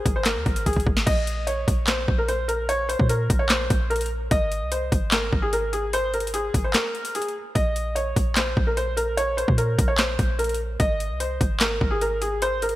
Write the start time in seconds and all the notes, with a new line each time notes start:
Already playing: G#4
0.06 G#1, kick, closed hi-hat
0.16 C5
0.25 A#4, snare, clap, closed hi-hat
0.36 D#2
0.46 G#1, kick, closed hi-hat
0.56 closed hi-hat
0.66 G#1 G#4, kick, closed hi-hat
0.73 G#1, kick, closed hi-hat
0.80 closed hi-hat
0.87 G#1, kick
0.97 snare
1.06 A#1 D#5, kick, closed hi-hat, crash
1.27 closed hi-hat
1.47 C#5, closed hi-hat
1.68 A#1, kick, closed hi-hat
1.87 C5, snare, clap, closed hi-hat
2.08 A#1, kick
2.18 A#4
2.28 C5, closed hi-hat
2.48 A#4, closed hi-hat
2.69 C#5, closed hi-hat
2.89 C5, closed hi-hat
2.99 A#2, kick
3.09 A#4, closed hi-hat
3.30 A#1, kick, closed hi-hat
3.39 C#5
3.49 C5, snare, clap, closed hi-hat
3.70 A#1, kick, closed hi-hat
3.90 A#4, closed hi-hat
3.96 closed hi-hat
4.01 closed hi-hat
4.06 closed hi-hat
4.31 G#1 D#5, kick, closed hi-hat
4.52 closed hi-hat
4.62 C2
4.72 C5, closed hi-hat
4.92 G#1, kick, closed hi-hat
5.12 A#4, snare, clap, closed hi-hat
5.33 G#1, kick
5.42 G#4
5.53 A#4, closed hi-hat
5.73 G#4, closed hi-hat
5.93 C5, closed hi-hat
6.14 A#4, closed hi-hat
6.20 closed hi-hat
6.27 closed hi-hat
6.34 G#4, closed hi-hat
6.54 G#1, kick, closed hi-hat
6.64 C5
6.74 A#4, snare, clap, closed hi-hat
6.95 closed hi-hat
7.05 closed hi-hat
7.15 G#4, closed hi-hat
7.22 closed hi-hat
7.28 closed hi-hat
7.55 A#1 D#5, kick, closed hi-hat
7.76 closed hi-hat
7.95 C#5, closed hi-hat
8.16 A#1, kick, closed hi-hat
8.36 C5, snare, clap, closed hi-hat
8.57 A#1, kick
8.67 A#4
8.77 C5, closed hi-hat
8.97 A#4, closed hi-hat
9.17 C#5, closed hi-hat
9.37 C5, closed hi-hat
9.48 A#2, kick
9.58 A#4, closed hi-hat
9.79 A#1, kick, closed hi-hat
9.88 C#5
9.98 C5, snare, clap, closed hi-hat
10.19 A#1, kick, closed hi-hat
10.39 A#4, closed hi-hat
10.44 closed hi-hat
10.49 closed hi-hat
10.54 closed hi-hat
10.80 G#1 D#5, kick, closed hi-hat
11.00 closed hi-hat
11.10 C2
11.20 C5, closed hi-hat
11.41 G#1, kick, closed hi-hat
11.60 A#4, snare, clap, closed hi-hat
11.81 G#1, kick
11.91 G#4
12.01 A#4, closed hi-hat
12.22 G#4, closed hi-hat
12.42 C5, closed hi-hat
12.62 A#4, closed hi-hat
12.69 closed hi-hat